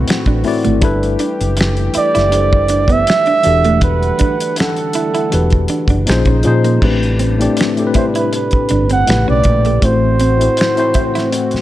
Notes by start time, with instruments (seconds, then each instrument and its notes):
Already playing: tine electric piano A2 A3 C4 E4 F#4 A4, analog synth pad E3 C4 F#4 B4
0.08 finger snap, snare, closed hi-hat
0.26 fingered electric bass A1, clean electric guitar D4, kick, closed hi-hat
0.44 tine electric piano A2 A3 C4 E4 F#4, muted clean electric guitar stroke, open hi-hat
0.48 tine electric piano D5
0.65 fingered electric bass G#1, clean electric guitar A3, closed hi-hat
0.81 fingered electric bass G1, analog synth pad E3 A3 G4, tine electric piano G3 D4 E4 A4 B4, kick, closed hi-hat
1.03 closed hi-hat
1.19 clean electric guitar D4, closed hi-hat
1.41 fingered electric bass F#1, closed hi-hat
1.57 finger snap, muted clean electric guitar stroke, closed hi-hat
1.61 snare
1.77 closed hi-hat
1.94 clean electric guitar E4, muted trumpet D5, muted fingered electric bass stroke, closed hi-hat
2.15 fingered electric bass F#1, clean electric guitar E4, snare, closed hi-hat
2.31 tine electric piano G3 D4 E4 A4 C5, muted clean electric guitar stroke, closed hi-hat
2.41 tine electric piano D5
2.53 kick
2.69 clean electric guitar D4, closed hi-hat
2.88 clean electric guitar B3, kick, closed hi-hat
2.92 muted trumpet E5
3.07 finger snap, snare, closed hi-hat
3.26 clean electric guitar D4, closed hi-hat
3.43 fingered electric bass E1, analog synth pad D3 G3 A3 F#5, tine electric piano E3 D4 F#4 G4, muted clean electric guitar stroke, closed hi-hat
3.47 tine electric piano A4
3.64 clean electric guitar A3, closed hi-hat
3.81 muted trumpet B4, kick, closed hi-hat
4.03 closed hi-hat
4.19 clean electric guitar D4, kick, closed hi-hat
4.40 closed hi-hat
4.56 muted trumpet A4, finger snap, muted clean electric guitar stroke, closed hi-hat
4.61 snare
4.77 closed hi-hat
4.93 clean electric guitar E4, closed hi-hat
5.15 clean electric guitar E4, closed hi-hat
5.30 fingered electric bass E1, tine electric piano E3 D4 F#4 G4, muted clean electric guitar stroke, closed hi-hat
5.34 tine electric piano B4
5.50 kick, closed hi-hat
5.68 clean electric guitar D4, closed hi-hat
5.88 fingered electric bass F#1, clean electric guitar D4, kick, closed hi-hat
6.06 fingered electric bass A#1, tine electric piano A#2 F3 C#4 D#4 G#4, analog synth pad C#3 G#3 D#4 C5, finger snap, closed hi-hat
6.10 tine electric piano C5, snare
6.25 fingered electric bass A#1, clean electric guitar C#4, kick, closed hi-hat
6.43 tine electric piano A#2 F3 C#4 D#4 G#4, fingered electric bass A#2, muted clean electric guitar stroke, closed hi-hat
6.47 tine electric piano C5
6.64 clean electric guitar A#3, closed hi-hat
6.80 fingered electric bass A1, tine electric piano A2 A3 C4 D4 G4 B4, analog synth pad C3 G3 D4, kick, crash
7.03 closed hi-hat
7.19 clean electric guitar C4, closed hi-hat
7.38 tine electric piano A2 A3 C4 D4 G4 D5, closed hi-hat
7.57 finger snap, muted clean electric guitar stroke, closed hi-hat
7.61 snare
7.76 tine electric piano A2 A3 C4 D4 G4, closed hi-hat
7.80 tine electric piano A4
7.87 tine electric piano B4
7.94 clean electric guitar E4, muted trumpet C5, kick, closed hi-hat
8.15 clean electric guitar E4, muted trumpet B4, closed hi-hat
8.33 muted trumpet B4, muted clean electric guitar stroke, closed hi-hat
8.51 muted fingered electric bass stroke, kick, closed hi-hat
8.69 fingered electric bass G1, clean electric guitar D4, closed hi-hat
8.90 clean electric guitar C4, muted trumpet F#5, closed hi-hat
9.06 fingered electric bass A1, tine electric piano A2 A3 B3 G4 B4, analog synth pad C#3 A3 G4, finger snap, closed hi-hat
9.10 snare
9.15 tine electric piano C#3
9.28 fingered electric bass B1, clean electric guitar C#4, muted trumpet D5
9.44 fingered electric bass A#1, muted clean electric guitar stroke, kick, closed hi-hat
9.65 clean electric guitar A3, closed hi-hat
9.81 fingered electric bass A1, tine electric piano A2 A3 C4 E4 F#4 C5, analog synth pad E3 C4 F#4, muted trumpet C5, kick, closed hi-hat
10.20 clean electric guitar C4, closed hi-hat
10.38 tine electric piano A2 A3 C4 E4 F#4, closed hi-hat
10.42 tine electric piano C5
10.57 finger snap, muted clean electric guitar stroke, closed hi-hat
10.61 snare
10.76 tine electric piano A2 A3 C4 E4 F#4 C5, closed hi-hat
10.94 clean electric guitar E4, kick, closed hi-hat
11.15 clean electric guitar E4, snare, closed hi-hat
11.32 muted clean electric guitar stroke, closed hi-hat
11.51 muted fingered electric bass stroke, closed hi-hat
11.55 snare